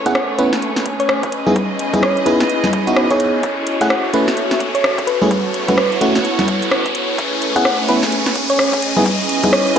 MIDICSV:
0, 0, Header, 1, 7, 480
1, 0, Start_track
1, 0, Tempo, 468750
1, 1597, Time_signature, 4, 2, 24, 8
1, 10024, End_track
2, 0, Start_track
2, 0, Title_t, "Synth pluck"
2, 0, Program_c, 0, 84
2, 62, Note_on_c, 0, 78, 88
2, 177, Note_off_c, 0, 78, 0
2, 1022, Note_on_c, 0, 73, 90
2, 1137, Note_off_c, 0, 73, 0
2, 2074, Note_on_c, 0, 73, 89
2, 2235, Note_off_c, 0, 73, 0
2, 2317, Note_on_c, 0, 71, 92
2, 2797, Note_off_c, 0, 71, 0
2, 3185, Note_on_c, 0, 73, 95
2, 3518, Note_off_c, 0, 73, 0
2, 3904, Note_on_c, 0, 78, 89
2, 4018, Note_off_c, 0, 78, 0
2, 4861, Note_on_c, 0, 73, 92
2, 4977, Note_off_c, 0, 73, 0
2, 5192, Note_on_c, 0, 71, 89
2, 5288, Note_off_c, 0, 71, 0
2, 5340, Note_on_c, 0, 71, 80
2, 5402, Note_off_c, 0, 71, 0
2, 5819, Note_on_c, 0, 71, 86
2, 5881, Note_off_c, 0, 71, 0
2, 5912, Note_on_c, 0, 71, 79
2, 6008, Note_off_c, 0, 71, 0
2, 7742, Note_on_c, 0, 78, 95
2, 7857, Note_off_c, 0, 78, 0
2, 8702, Note_on_c, 0, 73, 93
2, 8817, Note_off_c, 0, 73, 0
2, 9755, Note_on_c, 0, 73, 93
2, 9915, Note_off_c, 0, 73, 0
2, 10024, End_track
3, 0, Start_track
3, 0, Title_t, "Violin section"
3, 0, Program_c, 1, 48
3, 0, Note_on_c, 1, 57, 86
3, 0, Note_on_c, 1, 61, 84
3, 0, Note_on_c, 1, 68, 80
3, 0, Note_on_c, 1, 71, 79
3, 0, Note_on_c, 1, 73, 94
3, 1323, Note_off_c, 1, 73, 0
3, 1339, Note_off_c, 1, 57, 0
3, 1354, Note_on_c, 1, 75, 93
3, 3477, Note_off_c, 1, 71, 0
3, 3494, Note_off_c, 1, 75, 0
3, 3516, Note_on_c, 1, 69, 80
3, 3517, Note_on_c, 1, 73, 93
3, 5395, Note_off_c, 1, 68, 0
3, 5435, Note_on_c, 1, 66, 79
3, 5437, Note_on_c, 1, 59, 87
3, 7316, Note_off_c, 1, 61, 0
3, 7318, Note_off_c, 1, 69, 0
3, 7337, Note_off_c, 1, 66, 0
3, 7338, Note_off_c, 1, 59, 0
3, 7353, Note_on_c, 1, 61, 82
3, 7354, Note_on_c, 1, 57, 86
3, 7354, Note_on_c, 1, 68, 82
3, 7354, Note_on_c, 1, 71, 80
3, 8996, Note_off_c, 1, 73, 0
3, 9019, Note_off_c, 1, 57, 0
3, 9019, Note_off_c, 1, 71, 0
3, 9039, Note_on_c, 1, 75, 96
3, 9040, Note_on_c, 1, 71, 80
3, 10024, Note_off_c, 1, 61, 0
3, 10024, Note_off_c, 1, 68, 0
3, 10024, Note_off_c, 1, 71, 0
3, 10024, Note_off_c, 1, 75, 0
3, 10024, End_track
4, 0, Start_track
4, 0, Title_t, "Ambient pad"
4, 0, Program_c, 2, 92
4, 0, Note_on_c, 2, 61, 85
4, 0, Note_on_c, 2, 64, 72
4, 0, Note_on_c, 2, 71, 88
4, 96, Note_on_c, 2, 57, 70
4, 358, Note_off_c, 2, 64, 0
4, 358, Note_off_c, 2, 71, 0
4, 441, Note_on_c, 2, 80, 92
4, 1358, Note_off_c, 2, 57, 0
4, 1586, Note_on_c, 2, 83, 85
4, 1829, Note_on_c, 2, 64, 76
4, 2071, Note_on_c, 2, 75, 75
4, 2204, Note_off_c, 2, 80, 0
4, 3513, Note_on_c, 2, 66, 82
4, 3514, Note_off_c, 2, 75, 0
4, 3756, Note_on_c, 2, 76, 89
4, 4138, Note_off_c, 2, 61, 0
4, 4294, Note_off_c, 2, 64, 0
4, 4295, Note_off_c, 2, 83, 0
4, 5437, Note_on_c, 2, 64, 88
4, 6013, Note_on_c, 2, 71, 79
4, 6130, Note_off_c, 2, 66, 0
4, 6216, Note_off_c, 2, 76, 0
4, 7353, Note_on_c, 2, 61, 70
4, 7483, Note_on_c, 2, 57, 73
4, 8038, Note_off_c, 2, 71, 0
4, 8040, Note_off_c, 2, 64, 0
4, 8117, Note_on_c, 2, 80, 73
4, 9034, Note_off_c, 2, 57, 0
4, 9187, Note_on_c, 2, 64, 73
4, 9920, Note_off_c, 2, 80, 0
4, 10024, Note_off_c, 2, 61, 0
4, 10024, Note_off_c, 2, 64, 0
4, 10024, End_track
5, 0, Start_track
5, 0, Title_t, "FM electric piano"
5, 0, Program_c, 3, 5
5, 61, Note_on_c, 3, 59, 78
5, 61, Note_on_c, 3, 61, 72
5, 61, Note_on_c, 3, 68, 89
5, 62, Note_on_c, 3, 64, 74
5, 142, Note_off_c, 3, 61, 0
5, 143, Note_off_c, 3, 59, 0
5, 143, Note_off_c, 3, 64, 0
5, 143, Note_off_c, 3, 68, 0
5, 396, Note_on_c, 3, 59, 77
5, 396, Note_on_c, 3, 61, 71
5, 396, Note_on_c, 3, 64, 73
5, 396, Note_on_c, 3, 71, 84
5, 521, Note_off_c, 3, 59, 0
5, 521, Note_off_c, 3, 61, 0
5, 521, Note_off_c, 3, 64, 0
5, 521, Note_off_c, 3, 71, 0
5, 1501, Note_on_c, 3, 59, 83
5, 1501, Note_on_c, 3, 63, 72
5, 1501, Note_on_c, 3, 64, 76
5, 1501, Note_on_c, 3, 68, 92
5, 1582, Note_off_c, 3, 59, 0
5, 1582, Note_off_c, 3, 63, 0
5, 1582, Note_off_c, 3, 64, 0
5, 1582, Note_off_c, 3, 68, 0
5, 1981, Note_on_c, 3, 59, 83
5, 1981, Note_on_c, 3, 63, 77
5, 1981, Note_on_c, 3, 64, 79
5, 1981, Note_on_c, 3, 68, 92
5, 2062, Note_off_c, 3, 59, 0
5, 2062, Note_off_c, 3, 63, 0
5, 2062, Note_off_c, 3, 64, 0
5, 2062, Note_off_c, 3, 68, 0
5, 2314, Note_on_c, 3, 68, 92
5, 2315, Note_on_c, 3, 59, 81
5, 2315, Note_on_c, 3, 63, 77
5, 2315, Note_on_c, 3, 64, 75
5, 2496, Note_off_c, 3, 59, 0
5, 2496, Note_off_c, 3, 68, 0
5, 2497, Note_off_c, 3, 63, 0
5, 2497, Note_off_c, 3, 64, 0
5, 2941, Note_on_c, 3, 59, 80
5, 2941, Note_on_c, 3, 63, 74
5, 2941, Note_on_c, 3, 64, 72
5, 2941, Note_on_c, 3, 66, 87
5, 3147, Note_off_c, 3, 59, 0
5, 3147, Note_off_c, 3, 63, 0
5, 3147, Note_off_c, 3, 64, 0
5, 3147, Note_off_c, 3, 66, 0
5, 3180, Note_on_c, 3, 59, 76
5, 3181, Note_on_c, 3, 63, 69
5, 3181, Note_on_c, 3, 64, 68
5, 3181, Note_on_c, 3, 68, 82
5, 3504, Note_off_c, 3, 59, 0
5, 3505, Note_off_c, 3, 63, 0
5, 3505, Note_off_c, 3, 64, 0
5, 3505, Note_off_c, 3, 68, 0
5, 3902, Note_on_c, 3, 57, 81
5, 3902, Note_on_c, 3, 61, 77
5, 3902, Note_on_c, 3, 64, 78
5, 3902, Note_on_c, 3, 68, 91
5, 3983, Note_off_c, 3, 57, 0
5, 3983, Note_off_c, 3, 61, 0
5, 3983, Note_off_c, 3, 64, 0
5, 3983, Note_off_c, 3, 68, 0
5, 4236, Note_on_c, 3, 57, 78
5, 4236, Note_on_c, 3, 61, 74
5, 4236, Note_on_c, 3, 71, 85
5, 4237, Note_on_c, 3, 64, 72
5, 4361, Note_off_c, 3, 57, 0
5, 4361, Note_off_c, 3, 61, 0
5, 4361, Note_off_c, 3, 71, 0
5, 4362, Note_off_c, 3, 64, 0
5, 5343, Note_on_c, 3, 57, 84
5, 5343, Note_on_c, 3, 61, 79
5, 5343, Note_on_c, 3, 64, 79
5, 5343, Note_on_c, 3, 68, 92
5, 5423, Note_off_c, 3, 57, 0
5, 5423, Note_off_c, 3, 64, 0
5, 5423, Note_off_c, 3, 68, 0
5, 5424, Note_off_c, 3, 61, 0
5, 5823, Note_on_c, 3, 66, 91
5, 5824, Note_on_c, 3, 57, 86
5, 5824, Note_on_c, 3, 61, 78
5, 5824, Note_on_c, 3, 64, 78
5, 5903, Note_off_c, 3, 66, 0
5, 5904, Note_off_c, 3, 57, 0
5, 5904, Note_off_c, 3, 61, 0
5, 5904, Note_off_c, 3, 64, 0
5, 6156, Note_on_c, 3, 66, 94
5, 6157, Note_on_c, 3, 57, 84
5, 6157, Note_on_c, 3, 61, 79
5, 6157, Note_on_c, 3, 64, 79
5, 6337, Note_off_c, 3, 61, 0
5, 6337, Note_off_c, 3, 64, 0
5, 6337, Note_off_c, 3, 66, 0
5, 6338, Note_off_c, 3, 57, 0
5, 7741, Note_on_c, 3, 59, 84
5, 7741, Note_on_c, 3, 61, 77
5, 7741, Note_on_c, 3, 64, 80
5, 7741, Note_on_c, 3, 68, 94
5, 7822, Note_off_c, 3, 61, 0
5, 7822, Note_off_c, 3, 64, 0
5, 7822, Note_off_c, 3, 68, 0
5, 7823, Note_off_c, 3, 59, 0
5, 8076, Note_on_c, 3, 59, 78
5, 8076, Note_on_c, 3, 61, 74
5, 8076, Note_on_c, 3, 64, 72
5, 8076, Note_on_c, 3, 71, 90
5, 8201, Note_off_c, 3, 59, 0
5, 8201, Note_off_c, 3, 61, 0
5, 8201, Note_off_c, 3, 64, 0
5, 8201, Note_off_c, 3, 71, 0
5, 9181, Note_on_c, 3, 59, 86
5, 9181, Note_on_c, 3, 63, 77
5, 9181, Note_on_c, 3, 64, 78
5, 9181, Note_on_c, 3, 68, 95
5, 9262, Note_off_c, 3, 59, 0
5, 9262, Note_off_c, 3, 63, 0
5, 9262, Note_off_c, 3, 64, 0
5, 9262, Note_off_c, 3, 68, 0
5, 9661, Note_on_c, 3, 59, 89
5, 9661, Note_on_c, 3, 63, 79
5, 9661, Note_on_c, 3, 64, 78
5, 9661, Note_on_c, 3, 68, 100
5, 9742, Note_off_c, 3, 59, 0
5, 9742, Note_off_c, 3, 63, 0
5, 9742, Note_off_c, 3, 64, 0
5, 9742, Note_off_c, 3, 68, 0
5, 10024, End_track
6, 0, Start_track
6, 0, Title_t, "Riser"
6, 0, Program_c, 4, 103
6, 0, Note_on_c, 4, 60, 81
6, 10024, Note_off_c, 4, 60, 0
6, 10024, End_track
7, 0, Start_track
7, 0, Title_t, "Drums"
7, 60, Note_on_c, 9, 42, 63
7, 63, Note_on_c, 9, 36, 111
7, 154, Note_on_c, 9, 37, 124
7, 163, Note_off_c, 9, 42, 0
7, 165, Note_off_c, 9, 36, 0
7, 257, Note_off_c, 9, 37, 0
7, 395, Note_on_c, 9, 42, 88
7, 497, Note_off_c, 9, 42, 0
7, 541, Note_on_c, 9, 38, 58
7, 637, Note_on_c, 9, 42, 62
7, 643, Note_off_c, 9, 38, 0
7, 739, Note_off_c, 9, 42, 0
7, 783, Note_on_c, 9, 38, 53
7, 877, Note_on_c, 9, 36, 60
7, 877, Note_on_c, 9, 42, 101
7, 885, Note_off_c, 9, 38, 0
7, 979, Note_off_c, 9, 36, 0
7, 979, Note_off_c, 9, 42, 0
7, 1023, Note_on_c, 9, 42, 62
7, 1115, Note_on_c, 9, 37, 125
7, 1125, Note_off_c, 9, 42, 0
7, 1218, Note_off_c, 9, 37, 0
7, 1262, Note_on_c, 9, 36, 108
7, 1262, Note_on_c, 9, 42, 49
7, 1355, Note_off_c, 9, 42, 0
7, 1355, Note_on_c, 9, 42, 87
7, 1365, Note_off_c, 9, 36, 0
7, 1457, Note_off_c, 9, 42, 0
7, 1501, Note_on_c, 9, 63, 79
7, 1596, Note_on_c, 9, 36, 120
7, 1596, Note_on_c, 9, 42, 65
7, 1604, Note_off_c, 9, 63, 0
7, 1699, Note_off_c, 9, 36, 0
7, 1699, Note_off_c, 9, 42, 0
7, 1837, Note_on_c, 9, 42, 98
7, 1939, Note_off_c, 9, 42, 0
7, 1982, Note_on_c, 9, 36, 107
7, 1983, Note_on_c, 9, 42, 62
7, 1983, Note_on_c, 9, 63, 67
7, 2077, Note_on_c, 9, 37, 122
7, 2084, Note_off_c, 9, 36, 0
7, 2086, Note_off_c, 9, 42, 0
7, 2086, Note_off_c, 9, 63, 0
7, 2179, Note_off_c, 9, 37, 0
7, 2222, Note_on_c, 9, 42, 35
7, 2316, Note_off_c, 9, 42, 0
7, 2316, Note_on_c, 9, 42, 88
7, 2418, Note_off_c, 9, 42, 0
7, 2463, Note_on_c, 9, 38, 57
7, 2556, Note_on_c, 9, 42, 63
7, 2565, Note_off_c, 9, 38, 0
7, 2658, Note_off_c, 9, 42, 0
7, 2701, Note_on_c, 9, 38, 50
7, 2701, Note_on_c, 9, 63, 84
7, 2795, Note_on_c, 9, 42, 96
7, 2796, Note_on_c, 9, 36, 103
7, 2803, Note_off_c, 9, 38, 0
7, 2803, Note_off_c, 9, 63, 0
7, 2898, Note_off_c, 9, 42, 0
7, 2899, Note_off_c, 9, 36, 0
7, 2942, Note_on_c, 9, 42, 63
7, 3035, Note_on_c, 9, 37, 125
7, 3044, Note_off_c, 9, 42, 0
7, 3138, Note_off_c, 9, 37, 0
7, 3180, Note_on_c, 9, 42, 50
7, 3182, Note_on_c, 9, 36, 62
7, 3276, Note_off_c, 9, 42, 0
7, 3276, Note_on_c, 9, 42, 86
7, 3284, Note_off_c, 9, 36, 0
7, 3378, Note_off_c, 9, 42, 0
7, 3515, Note_on_c, 9, 42, 67
7, 3516, Note_on_c, 9, 36, 114
7, 3617, Note_off_c, 9, 42, 0
7, 3618, Note_off_c, 9, 36, 0
7, 3755, Note_on_c, 9, 42, 99
7, 3857, Note_off_c, 9, 42, 0
7, 3901, Note_on_c, 9, 42, 66
7, 3902, Note_on_c, 9, 36, 105
7, 3996, Note_on_c, 9, 37, 121
7, 4004, Note_off_c, 9, 42, 0
7, 4005, Note_off_c, 9, 36, 0
7, 4098, Note_off_c, 9, 37, 0
7, 4235, Note_on_c, 9, 42, 90
7, 4337, Note_off_c, 9, 42, 0
7, 4381, Note_on_c, 9, 38, 56
7, 4473, Note_on_c, 9, 42, 67
7, 4484, Note_off_c, 9, 38, 0
7, 4576, Note_off_c, 9, 42, 0
7, 4621, Note_on_c, 9, 38, 49
7, 4715, Note_on_c, 9, 42, 103
7, 4716, Note_on_c, 9, 36, 60
7, 4723, Note_off_c, 9, 38, 0
7, 4817, Note_off_c, 9, 42, 0
7, 4818, Note_off_c, 9, 36, 0
7, 4862, Note_on_c, 9, 42, 65
7, 4957, Note_on_c, 9, 37, 123
7, 4965, Note_off_c, 9, 42, 0
7, 5059, Note_off_c, 9, 37, 0
7, 5102, Note_on_c, 9, 36, 106
7, 5103, Note_on_c, 9, 42, 52
7, 5196, Note_off_c, 9, 42, 0
7, 5196, Note_on_c, 9, 42, 90
7, 5204, Note_off_c, 9, 36, 0
7, 5298, Note_off_c, 9, 42, 0
7, 5342, Note_on_c, 9, 63, 79
7, 5436, Note_on_c, 9, 36, 111
7, 5437, Note_on_c, 9, 42, 71
7, 5444, Note_off_c, 9, 63, 0
7, 5538, Note_off_c, 9, 36, 0
7, 5539, Note_off_c, 9, 42, 0
7, 5675, Note_on_c, 9, 42, 103
7, 5778, Note_off_c, 9, 42, 0
7, 5821, Note_on_c, 9, 42, 69
7, 5821, Note_on_c, 9, 63, 62
7, 5822, Note_on_c, 9, 36, 104
7, 5915, Note_on_c, 9, 37, 112
7, 5923, Note_off_c, 9, 42, 0
7, 5923, Note_off_c, 9, 63, 0
7, 5924, Note_off_c, 9, 36, 0
7, 6017, Note_off_c, 9, 37, 0
7, 6062, Note_on_c, 9, 42, 38
7, 6157, Note_off_c, 9, 42, 0
7, 6157, Note_on_c, 9, 42, 94
7, 6259, Note_off_c, 9, 42, 0
7, 6301, Note_on_c, 9, 38, 53
7, 6397, Note_on_c, 9, 42, 71
7, 6404, Note_off_c, 9, 38, 0
7, 6499, Note_off_c, 9, 42, 0
7, 6542, Note_on_c, 9, 38, 50
7, 6542, Note_on_c, 9, 63, 78
7, 6635, Note_on_c, 9, 42, 104
7, 6636, Note_on_c, 9, 36, 103
7, 6645, Note_off_c, 9, 38, 0
7, 6645, Note_off_c, 9, 63, 0
7, 6737, Note_off_c, 9, 42, 0
7, 6738, Note_off_c, 9, 36, 0
7, 6783, Note_on_c, 9, 42, 67
7, 6876, Note_on_c, 9, 37, 114
7, 6885, Note_off_c, 9, 42, 0
7, 6978, Note_off_c, 9, 37, 0
7, 7022, Note_on_c, 9, 36, 59
7, 7022, Note_on_c, 9, 42, 53
7, 7116, Note_off_c, 9, 42, 0
7, 7116, Note_on_c, 9, 42, 93
7, 7124, Note_off_c, 9, 36, 0
7, 7218, Note_off_c, 9, 42, 0
7, 7356, Note_on_c, 9, 36, 114
7, 7357, Note_on_c, 9, 42, 70
7, 7458, Note_off_c, 9, 36, 0
7, 7460, Note_off_c, 9, 42, 0
7, 7597, Note_on_c, 9, 42, 110
7, 7699, Note_off_c, 9, 42, 0
7, 7742, Note_on_c, 9, 36, 100
7, 7743, Note_on_c, 9, 42, 69
7, 7835, Note_on_c, 9, 37, 117
7, 7844, Note_off_c, 9, 36, 0
7, 7845, Note_off_c, 9, 42, 0
7, 7937, Note_off_c, 9, 37, 0
7, 8074, Note_on_c, 9, 42, 98
7, 8177, Note_off_c, 9, 42, 0
7, 8222, Note_on_c, 9, 38, 56
7, 8315, Note_on_c, 9, 42, 73
7, 8324, Note_off_c, 9, 38, 0
7, 8418, Note_off_c, 9, 42, 0
7, 8462, Note_on_c, 9, 38, 51
7, 8556, Note_on_c, 9, 36, 58
7, 8556, Note_on_c, 9, 42, 104
7, 8565, Note_off_c, 9, 38, 0
7, 8658, Note_off_c, 9, 36, 0
7, 8658, Note_off_c, 9, 42, 0
7, 8702, Note_on_c, 9, 42, 69
7, 8796, Note_on_c, 9, 37, 118
7, 8804, Note_off_c, 9, 42, 0
7, 8898, Note_off_c, 9, 37, 0
7, 8941, Note_on_c, 9, 36, 99
7, 8942, Note_on_c, 9, 42, 55
7, 9035, Note_off_c, 9, 42, 0
7, 9035, Note_on_c, 9, 42, 96
7, 9044, Note_off_c, 9, 36, 0
7, 9138, Note_off_c, 9, 42, 0
7, 9181, Note_on_c, 9, 63, 72
7, 9275, Note_on_c, 9, 36, 115
7, 9276, Note_on_c, 9, 42, 71
7, 9283, Note_off_c, 9, 63, 0
7, 9378, Note_off_c, 9, 36, 0
7, 9378, Note_off_c, 9, 42, 0
7, 9515, Note_on_c, 9, 42, 110
7, 9618, Note_off_c, 9, 42, 0
7, 9661, Note_on_c, 9, 36, 106
7, 9662, Note_on_c, 9, 42, 67
7, 9662, Note_on_c, 9, 63, 59
7, 9757, Note_on_c, 9, 37, 119
7, 9764, Note_off_c, 9, 36, 0
7, 9764, Note_off_c, 9, 42, 0
7, 9764, Note_off_c, 9, 63, 0
7, 9859, Note_off_c, 9, 37, 0
7, 9901, Note_on_c, 9, 42, 37
7, 10004, Note_off_c, 9, 42, 0
7, 10024, End_track
0, 0, End_of_file